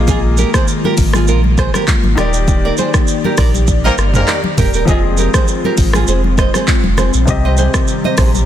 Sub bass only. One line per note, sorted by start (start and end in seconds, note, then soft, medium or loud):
0.00 0.45 A#1 loud
0.98 1.29 G#1 loud
1.28 1.68 A#1 loud
2.04 2.16 G#1 medium
2.18 2.70 D#1 loud
3.38 3.90 A#1 medium
3.98 4.24 G1 medium
4.58 4.84 D#1 loud
4.88 5.28 F1 loud
5.78 6.04 G#1 loud
6.08 6.48 F1 loud
6.84 7.11 F1 loud
7.14 7.26 A#1 medium
7.28 7.68 C2 loud
8.18 8.46 A#1 medium